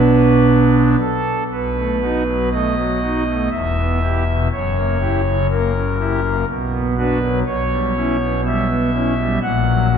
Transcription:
Already playing: B1 B2 F#3 B3 D4 B4
1.00 A4
1.52 B1 B2 B4
1.77 A3
2.02 D#4 F#4
2.27 F#3
2.52 A3 D#5
2.77 F#3
3.02 D#4 F#4
3.27 A3
3.51 E1 E2 E5
3.77 B3
4.03 E4 G4
4.27 B2
4.52 F#1 F#2 C#5
4.76 A#3
5.00 E4 G4
5.26 C#3
5.51 A#3 A#4
5.76 C#3
6.00 E4 G4
6.23 A#3
6.48 B1 B2
6.72 B3
6.97 D4 F#4 B4
7.23 F#3
7.46 B1 B2 C#5
7.71 G3
7.96 C#4 E4
8.21 B3
8.45 G3 E5
8.69 B3
8.94 C#4 E4
9.18 G3
9.42 A#1 A#2 F#5
9.66 F#3
9.91 C#4 F#4

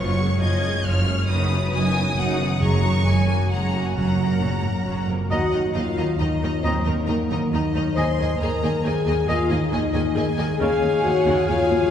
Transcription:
Already playing: F#1 F#2 F3 F4 C#5 C#6
0.18 G#3 G#4
0.39 F#1 F#2 F3 F4 C#5 D#5 G#6
0.62 G#3 G#4
0.84 F#1 F#2 F3 F4 C#5 F6
1.06 G#3 G#4
1.27 F#1 F#2 D#4 F#4 B4 D#6
1.50 F#3 B3 D#4
1.72 F#1 F#2 D#4 F#4 B4 G#5 D#6
1.94 B3 D#4 F#4
2.16 F#1 F#2 F#3 D#4 F#4 F#5
2.38 D#3 B3 D#4
2.60 F#1 F#2 G#3 G#4 A#5 C#6
2.83 G#3 A#3 F#4
3.05 F#1 F#2 G#3 G#4 A#4 G#5
3.27 A#3 F#4 G#4 G#5
3.50 F#1 F#2 G#3 F#4 G#4 F#5 A#5
3.72 G#3 A#3 F#4
3.86 G#5
3.94 F#1 F#2 C#4 F#4 F#5 A#5
4.17 F#3 A#3 A#4
4.40 F#1 A#2 C#4 F#4 A#4
4.62 G#2 A#3 F#4 A#4
4.84 F#1 F#2 F#3 C#4 F#4
5.07 F2 C#3 A#3 A#4
5.29 D#2 D#3 D#4 F#4 D#5 F#5 A#5
5.42 F#3
5.52 D#2 D#3 D#4 F#4 D#5 A#5
5.64 A#4
5.73 D#2 D#3 F4 F#4 D#5 F5 A#5
5.77 D#4
5.86 D#5
5.97 D#2 D#3 D#4 D#5 A#5
6.08 F#5
6.18 D#2 D#3 D#4 F#4 D#5 A#5
6.29 A#4
6.41 D#2 D#3 F#3 D#4 D#5 A#5
6.52 D#4
6.62 D#2 D#3 C4 D#4 C5 D#5 A#5
6.75 F#3
6.84 D#2 D#3 A#3 D#4 A#4 D#5 A#5
6.97 A#4
7.07 D#2 D#3 D#4 F#4 D#5 A#5
7.18 F#5
7.29 D#2 D#3 D#4 D#5 A#5
7.39 F#5
7.50 D#2 D#3 D#4 F#4 D#5 A#5
7.61 A#4
7.72 D#2 D#3 F#3 D#4 D#5 A#5
7.84 D#4
7.95 D#2 D#3 G#4 C5 D#5 G#5 C6
8.06 D#4
8.17 D#2 D#3 G#4
8.21 D#2 D#5 G#5
8.28 D#4
8.39 D#2 D#3 G#4 A#4 D#5 G#5 A#5
8.50 G#5
8.62 D#2 D#3 G#4 D#5 G#5
8.74 G#5
8.84 D#2 D#3 G#4 D#5 G#5
8.96 G#4
9.06 D#2 D#3 D#4 G#4 D#5 G#5
9.18 G#3
9.28 D#2 D#3 F4 G#4 D#5 F5 G#5
9.39 D#4
9.50 D#2 D#3 D#4 G#4 D#5 G#5
9.60 D#4
9.71 D#2 D#3 G#4 D#5 G#5
9.82 G#5
9.93 D#2 D#3 G#4 D#5 G#5
10.04 G#5
10.14 D#2 D#3 G#4 D#5 G#5
10.26 G#4
10.37 D#2 D#3 D#4 G#4 D#5 G#5
10.49 G#3
10.57 D#2 C#3 D#3 G#4 C#5 F5 G#5
10.71 C#4
10.82 D#2 C#3
11.03 D#2 F3 F#4 C#5 F#5
11.16 G#5
11.25 D#2 C#3 F5
11.47 D#2 C#3 F4 C#5 F5 G#5
11.59 F4
11.70 D#2 F3 C#4
11.81 F3

